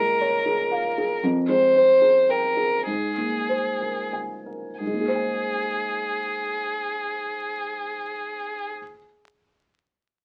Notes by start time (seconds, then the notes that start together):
Already playing: A#2 G#3 A#4
0.21 C#5
0.46 G#4
0.71 F5
0.98 G#4
1.23 F2
1.49 G#3 C5
1.76 C5
2.02 G#4
2.29 A#4 G5
2.57 G#4
2.86 G#2 G#4
3.18 A#3
3.49 C5
3.80 A#4
4.13 G#5
4.46 A#4
4.80 G#2 G#4
4.87 G#3
4.94 A#3
5.01 G#4
5.08 C5
5.15 G#5